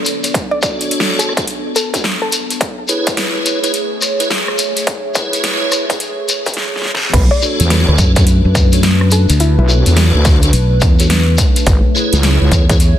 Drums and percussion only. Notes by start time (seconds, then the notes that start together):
0.05 closed hi-hat, shekere
0.24 closed hi-hat, shekere
0.34 kick, closed hi-hat, shekere
0.62 kick, closed hi-hat, shekere
0.80 closed hi-hat, shekere
0.91 closed hi-hat, shekere
1.00 snare
1.19 cross-stick, closed hi-hat, shekere
1.29 cross-stick
1.37 kick, cross-stick, closed hi-hat, shekere
1.48 closed hi-hat, shekere
1.76 closed hi-hat, shekere
1.94 kick, closed hi-hat, shekere
2.04 snare, shekere
2.32 closed hi-hat, shekere
2.51 closed hi-hat, shekere
2.61 kick, closed hi-hat, shekere
2.88 closed hi-hat, shekere
3.07 kick, closed hi-hat, shekere
3.17 snare, closed hi-hat, shekere
3.46 closed hi-hat, shekere
3.64 closed hi-hat, shekere
3.74 closed hi-hat, shekere
4.01 cross-stick, closed hi-hat, shekere
4.20 closed hi-hat, shekere
4.30 snare, shekere
4.48 cross-stick
4.58 closed hi-hat, shekere
4.76 closed hi-hat, shekere
4.87 kick, closed hi-hat, shekere
5.15 kick, closed hi-hat, shekere
5.33 closed hi-hat, shekere
5.43 snare, closed hi-hat, shekere
5.72 cross-stick, closed hi-hat, shekere
5.90 kick, closed hi-hat, shekere
6.00 closed hi-hat, shekere
6.29 closed hi-hat, shekere
6.46 kick, closed hi-hat, shekere
6.54 snare, closed hi-hat
6.76 snare
6.82 snare
6.85 snare
6.95 snare
7.14 kick, closed hi-hat, crash, shekere
7.42 shekere
7.60 closed hi-hat, shekere
7.70 snare, closed hi-hat, shekere
7.98 kick, closed hi-hat, shekere
8.16 kick, closed hi-hat, shekere
8.27 closed hi-hat, shekere
8.55 kick, cross-stick, closed hi-hat, shekere
8.72 closed hi-hat, shekere
8.83 snare, closed hi-hat, shekere
9.01 cross-stick
9.11 closed hi-hat, shekere
9.29 closed hi-hat, shekere
9.40 closed hi-hat, shekere
9.69 shekere
9.86 closed hi-hat, shekere
9.96 snare, closed hi-hat, shekere
10.25 kick, cross-stick, snare, closed hi-hat, shekere
10.42 closed hi-hat, shekere
10.53 closed hi-hat, shekere
10.81 kick, closed hi-hat, shekere
10.99 closed hi-hat, shekere
11.10 snare, closed hi-hat, shekere
11.38 kick, closed hi-hat, shekere
11.56 closed hi-hat, shekere
11.66 kick, closed hi-hat, shekere
11.96 shekere
12.13 closed hi-hat, shekere
12.23 snare, closed hi-hat, shekere
12.52 kick, closed hi-hat, shekere
12.70 kick, closed hi-hat, shekere
12.80 closed hi-hat, shekere